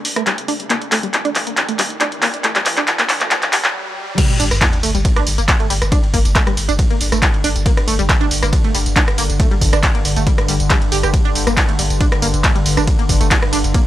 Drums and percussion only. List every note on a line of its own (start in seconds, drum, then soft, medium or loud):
0.05 open hi-hat loud
0.16 cross-stick medium
0.16 closed hi-hat medium
0.27 clap medium
0.27 closed hi-hat medium
0.38 closed hi-hat medium
0.48 open hi-hat medium
0.60 closed hi-hat medium
0.70 clap medium
0.70 closed hi-hat medium
0.82 closed hi-hat medium
0.92 clap medium
0.92 open hi-hat loud
1.03 closed hi-hat medium
1.14 clap medium
1.14 closed hi-hat loud
1.25 closed hi-hat medium
1.35 clap medium
1.35 open hi-hat loud
1.47 closed hi-hat medium
1.57 clap medium
1.57 closed hi-hat medium
1.69 closed hi-hat medium
1.79 clap medium
1.79 open hi-hat loud
1.90 closed hi-hat medium
2.00 clap medium
2.00 closed hi-hat medium
2.12 closed hi-hat medium
2.22 clap medium
2.22 open hi-hat loud
2.34 closed hi-hat medium
2.44 clap medium
2.44 closed hi-hat medium
2.55 clap medium
2.55 closed hi-hat medium
2.66 clap medium
2.66 open hi-hat loud
2.77 clap medium
2.77 closed hi-hat medium
2.87 clap loud
2.87 closed hi-hat medium
2.99 clap medium
2.99 closed hi-hat medium
3.09 clap loud
3.09 open hi-hat loud
3.21 clap medium
3.21 closed hi-hat medium
3.31 clap loud
3.31 closed hi-hat medium
3.42 clap medium
3.42 closed hi-hat medium
3.53 clap loud
3.53 open hi-hat loud
3.64 clap medium
3.64 closed hi-hat medium
4.18 kick loud
4.18 closed hi-hat loud
4.18 crash loud
4.18 ride medium
4.18 tambourine soft
4.30 closed hi-hat medium
4.40 open hi-hat loud
4.40 tambourine medium
4.51 cross-stick medium
4.51 closed hi-hat medium
4.51 tambourine soft
4.61 kick loud
4.61 clap loud
4.61 closed hi-hat loud
4.61 ride medium
4.73 closed hi-hat medium
4.83 open hi-hat medium
4.83 tambourine medium
4.95 closed hi-hat medium
4.95 tambourine soft
5.05 kick loud
5.05 closed hi-hat medium
5.05 ride medium
5.05 tambourine soft
5.16 cross-stick medium
5.16 closed hi-hat medium
5.27 open hi-hat loud
5.27 tambourine medium
5.38 closed hi-hat medium
5.38 tambourine soft
5.48 kick loud
5.48 clap loud
5.48 closed hi-hat medium
5.48 ride medium
5.48 tambourine soft
5.60 closed hi-hat medium
5.70 open hi-hat medium
5.70 tambourine medium
5.82 cross-stick medium
5.82 closed hi-hat medium
5.82 tambourine soft
5.92 kick loud
5.92 closed hi-hat loud
5.92 ride medium
5.92 tambourine soft
6.03 closed hi-hat medium
6.14 kick medium
6.14 open hi-hat loud
6.14 tambourine medium
6.25 closed hi-hat medium
6.25 tambourine soft
6.35 kick loud
6.35 clap loud
6.35 closed hi-hat loud
6.35 ride medium
6.35 tambourine soft
6.47 cross-stick medium
6.47 closed hi-hat medium
6.57 open hi-hat loud
6.57 tambourine medium
6.69 closed hi-hat medium
6.69 tambourine soft
6.79 kick loud
6.79 closed hi-hat loud
6.79 ride medium
6.79 tambourine soft
6.90 closed hi-hat medium
7.01 open hi-hat loud
7.01 tambourine medium
7.12 cross-stick medium
7.12 closed hi-hat medium
7.12 tambourine soft
7.22 kick loud
7.22 clap loud
7.22 closed hi-hat loud
7.22 ride medium
7.22 tambourine soft
7.34 closed hi-hat medium
7.44 open hi-hat loud
7.44 tambourine medium
7.56 closed hi-hat medium
7.56 tambourine soft
7.66 kick loud
7.66 closed hi-hat medium
7.66 ride medium
7.66 tambourine soft
7.77 cross-stick medium
7.77 closed hi-hat medium
7.88 open hi-hat loud
7.88 tambourine medium
7.99 closed hi-hat medium
7.99 tambourine soft
8.09 kick loud
8.09 clap loud
8.09 closed hi-hat loud
8.09 ride medium
8.09 tambourine soft
8.21 closed hi-hat medium
8.31 open hi-hat loud
8.31 tambourine medium
8.43 cross-stick loud
8.43 closed hi-hat medium
8.43 tambourine soft
8.53 kick loud
8.53 closed hi-hat loud
8.53 ride medium
8.53 tambourine soft
8.64 closed hi-hat medium
8.75 open hi-hat loud
8.75 tambourine medium
8.86 closed hi-hat medium
8.86 tambourine soft
8.96 kick loud
8.96 clap loud
8.96 closed hi-hat loud
8.96 ride medium
9.08 cross-stick loud
9.08 closed hi-hat medium
9.18 open hi-hat loud
9.18 tambourine medium
9.30 closed hi-hat medium
9.30 tambourine soft
9.40 kick loud
9.40 closed hi-hat medium
9.40 ride medium
9.40 tambourine soft
9.51 closed hi-hat medium
9.61 kick medium
9.61 open hi-hat loud
9.61 tambourine medium
9.73 cross-stick loud
9.73 closed hi-hat medium
9.73 tambourine soft
9.83 kick loud
9.83 clap loud
9.83 closed hi-hat loud
9.83 ride medium
9.83 tambourine soft
9.95 closed hi-hat medium
10.05 open hi-hat loud
10.05 tambourine medium
10.16 closed hi-hat medium
10.16 tambourine soft
10.27 kick loud
10.27 closed hi-hat medium
10.27 ride medium
10.27 tambourine soft
10.38 cross-stick loud
10.38 closed hi-hat medium
10.48 open hi-hat loud
10.48 tambourine medium
10.60 closed hi-hat medium
10.60 tambourine soft
10.70 kick loud
10.70 clap loud
10.70 closed hi-hat medium
10.70 ride medium
10.70 tambourine soft
10.82 closed hi-hat medium
10.92 open hi-hat loud
10.92 tambourine medium
11.03 cross-stick medium
11.03 closed hi-hat medium
11.03 tambourine soft
11.14 kick loud
11.14 closed hi-hat medium
11.14 ride medium
11.14 tambourine soft
11.25 closed hi-hat medium
11.35 open hi-hat loud
11.35 tambourine medium
11.47 cross-stick loud
11.47 closed hi-hat soft
11.47 tambourine soft
11.57 kick loud
11.57 clap loud
11.57 closed hi-hat medium
11.57 ride medium
11.57 tambourine soft
11.69 closed hi-hat medium
11.79 open hi-hat loud
11.79 tambourine medium
11.90 closed hi-hat medium
11.90 tambourine soft
12.01 kick loud
12.01 closed hi-hat medium
12.01 ride medium
12.01 tambourine soft
12.12 cross-stick loud
12.12 closed hi-hat medium
12.22 open hi-hat loud
12.22 tambourine medium
12.34 closed hi-hat medium
12.34 tambourine soft
12.44 kick loud
12.44 clap loud
12.44 closed hi-hat medium
12.44 ride medium
12.44 tambourine soft
12.55 closed hi-hat medium
12.66 open hi-hat medium
12.66 tambourine medium
12.77 cross-stick medium
12.77 closed hi-hat soft
12.77 tambourine soft
12.87 kick loud
12.87 closed hi-hat medium
12.87 ride medium
12.87 tambourine soft
12.99 closed hi-hat medium
13.09 kick medium
13.09 open hi-hat loud
13.09 tambourine medium
13.21 closed hi-hat medium
13.21 tambourine soft
13.31 kick loud
13.31 clap loud
13.31 closed hi-hat medium
13.31 ride medium
13.31 tambourine soft
13.42 cross-stick loud
13.42 closed hi-hat medium
13.53 open hi-hat medium
13.53 tambourine medium
13.64 closed hi-hat medium
13.64 tambourine soft
13.74 kick loud
13.74 closed hi-hat medium
13.74 ride medium
13.74 tambourine soft